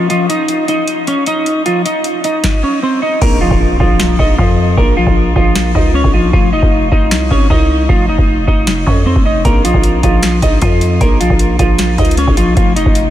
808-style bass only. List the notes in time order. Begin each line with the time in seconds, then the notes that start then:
3.22 A#1
3.51 A#1
3.80 A#1
4.19 A#1
4.38 F2
4.77 A#1
5.07 A#1
5.36 A#1
5.75 C#2
6.04 A#1
6.33 F1
6.63 F1
6.92 F1
7.11 C2
7.31 G#1
7.50 C2
7.89 F1
8.18 F1
8.48 F1
8.87 F2
9.16 F1
9.45 A#1
9.74 A#1
10.03 A#1
10.42 A#1
10.62 F2
11.01 A#1
11.30 A#1
11.59 A#1
11.98 C#2
12.27 A#1
12.57 F1
12.86 F1